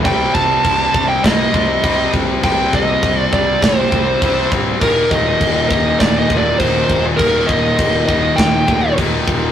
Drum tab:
CC |xxxxxxxx|xxxxxxxx|xxxxxxxx|xxxxxxxx|
SD |----o---|----o---|----o---|----o---|
BD |oooooooo|oooooooo|oooooooo|oooooooo|